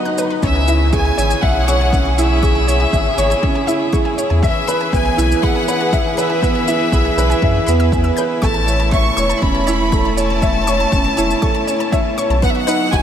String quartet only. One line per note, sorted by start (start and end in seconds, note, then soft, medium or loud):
0.00 0.39 F#3 medium
0.00 0.39 B3 medium
0.00 0.39 D#4 medium
0.42 4.39 C#3 medium
0.42 4.39 C#4 medium
0.42 4.39 E4 medium
0.42 4.39 G#4 medium
4.44 8.40 E3 medium
4.44 12.40 E4 medium
4.44 8.40 G#4 medium
4.44 8.40 B4 medium
8.42 12.39 A3 medium
8.42 12.39 C#4 medium
12.43 13.02 F#3 medium
12.43 13.02 B3 medium
12.43 13.02 D#4 medium